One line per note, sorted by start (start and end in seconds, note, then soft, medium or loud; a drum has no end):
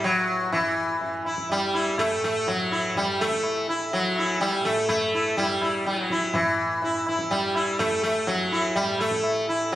0.00 1.49 E2 medium
0.00 2.12 A2 soft
0.00 0.28 E3 medium
0.04 0.52 F#3 medium
0.04 tabla na medium
0.28 0.88 E3 medium
0.52 1.22 E3 medium
0.52 tabla na medium
0.52 tabla ge medium
0.88 2.73 E3 medium
1.01 tabla tin medium
1.01 tabla ge medium
1.25 1.49 E4 soft
1.25 tabla na medium
1.38 tabla ke medium
1.49 3.96 E2 medium
1.49 2.01 G3 medium
1.49 tabla tin medium
1.49 tabla ge medium
1.74 1.97 E4 soft
1.74 tabla na medium
1.98 2.23 A3 loud
1.98 tabla na medium
1.98 tabla ge medium
2.12 4.57 A2 medium
2.24 2.49 A3 medium
2.46 2.97 F#3 medium
2.46 tabla tin medium
2.46 tabla ge medium
2.72 3.34 E3 medium
2.72 2.94 E4 soft
2.95 3.21 G3 medium
2.95 tabla tin medium
2.95 tabla ge medium
3.19 3.66 A3 medium
3.19 tabla na medium
3.31 5.19 E3 medium
3.31 tabla ke medium
3.43 tabla na medium
3.69 3.91 E4 soft
3.92 4.40 F#3 medium
3.92 tabla tin medium
3.96 8.19 E2 medium
4.16 4.40 E4 soft
4.16 tabla na medium
4.40 4.66 G3 medium
4.40 4.64 E4 soft
4.40 tabla te medium
4.52 tabla te soft
4.58 6.35 A2 medium
4.65 4.88 A3 medium
4.65 tabla ke medium
4.77 tabla te medium
4.89 5.37 A3 medium
4.89 tabla na medium
4.89 tabla ge medium
5.14 5.36 E4 soft
5.19 5.80 E3 medium
5.37 5.86 G3 medium
5.37 5.61 E4 soft
5.37 tabla tin medium
5.37 tabla ge medium
5.61 5.85 E4 soft
5.61 tabla na medium
5.80 6.97 E3 medium
5.86 5.98 G3 medium
5.86 tabla te medium
5.98 6.36 F#3 medium
5.98 tabla te medium
6.10 6.33 E4 soft
6.10 tabla ke medium
6.22 tabla te medium
6.34 8.80 A2 medium
6.34 7.03 E3 medium
6.34 tabla na loud
6.34 tabla ge loud
6.82 7.06 E4 soft
6.82 tabla tin medium
6.82 tabla ge medium
6.97 7.56 E3 medium
7.07 7.30 E4 soft
7.07 tabla na medium
7.19 tabla ke medium
7.31 7.81 G3 medium
7.31 tabla tin medium
7.31 tabla ge medium
7.55 9.41 E3 medium
7.55 7.78 E4 soft
7.55 tabla na medium
7.79 8.02 A3 loud
7.79 tabla na medium
7.79 tabla ge medium
8.03 8.28 A3 medium
8.19 9.75 E2 medium
8.27 8.75 F#3 medium
8.27 tabla tin medium
8.27 tabla ge medium
8.52 8.74 E4 soft
8.75 9.01 G3 medium
8.75 tabla tin medium
8.75 tabla ge medium
8.80 9.75 A2 medium
8.99 9.45 A3 medium
8.99 tabla na medium
9.11 tabla ke medium
9.23 tabla na medium
9.41 9.75 E3 medium
9.49 9.71 E4 soft
9.72 tabla tin medium